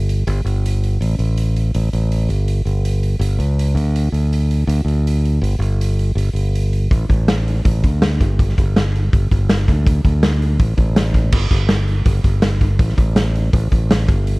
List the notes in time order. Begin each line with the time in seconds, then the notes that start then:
Already playing: G1
0.09 open hi-hat
0.27 G1, open hi-hat
0.45 G1, open hi-hat
0.66 open hi-hat
0.83 open hi-hat
1.01 A1, open hi-hat
1.19 A1, open hi-hat
1.37 open hi-hat
1.56 open hi-hat
1.74 A1, open hi-hat
1.93 A1, open hi-hat
2.12 open hi-hat
2.29 G1, open hi-hat
2.48 open hi-hat
2.65 G1, open hi-hat
2.85 open hi-hat
3.03 open hi-hat
3.19 G1, open hi-hat
3.39 C#2, open hi-hat
3.59 open hi-hat
3.75 D2, open hi-hat
3.96 open hi-hat
4.12 D2, open hi-hat
4.33 open hi-hat
4.51 open hi-hat
4.67 D2, open hi-hat
4.85 D2, open hi-hat
5.07 open hi-hat
5.25 open hi-hat
5.42 G1, open hi-hat
5.59 G1, open hi-hat
5.81 open hi-hat
5.99 open hi-hat
6.15 G1, open hi-hat
6.33 G1, open hi-hat
6.55 open hi-hat
6.73 open hi-hat
6.91 A1, kick, open hi-hat
7.09 A1, kick, open hi-hat
7.28 snare, open hi-hat
7.48 open hi-hat
7.65 A1, kick, open hi-hat
7.83 D2, kick, open hi-hat
8.02 snare, open hi-hat
8.21 G1, kick, open hi-hat
8.39 kick, open hi-hat
8.49 snare
8.58 G1, kick, open hi-hat
8.76 snare, open hi-hat
8.95 open hi-hat
9.13 G1, kick, open hi-hat
9.31 G1, kick, open hi-hat
9.49 snare, open hi-hat
9.60 snare
9.68 D2, kick, open hi-hat
9.87 kick, open hi-hat
10.04 D2, kick, open hi-hat
10.23 snare, open hi-hat
10.42 open hi-hat
10.59 A1, kick, open hi-hat
10.77 A1, kick, open hi-hat
10.96 snare, open hi-hat
11.14 kick, open hi-hat
11.32 G1, kick, crash
11.51 G1, kick, open hi-hat
11.69 snare, open hi-hat
11.88 open hi-hat
12.05 G1, kick, open hi-hat
12.24 G1, kick, open hi-hat
12.42 snare, open hi-hat
12.61 kick, open hi-hat
12.79 A1, kick, open hi-hat
12.89 snare
12.97 A1, kick, open hi-hat
13.16 snare, open hi-hat
13.35 open hi-hat
13.53 A1, kick, open hi-hat
13.72 A1, kick, open hi-hat
13.91 snare, open hi-hat
14.08 G1, kick, open hi-hat
14.27 open hi-hat